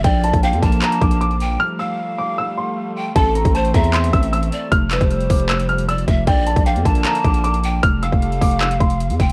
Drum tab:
HH |x-xxxxxxxxxxxxx-|----------------|x-xxxxxxxxxxxxx-|x-xxxxoxxxxxxxx-|
CP |--------x-------|----------------|--------x-------|--x-----x-------|
BD |o--o--o---o-----|----------------|o--o--o---o-----|o--o--o-------o-|

HH |x-xxxxxxxxxxxxx-|x-xxxxoxxxxxxxxx|
CP |--------x-------|--------x-------|
BD |o--o--o---o-----|o--o--o---o---o-|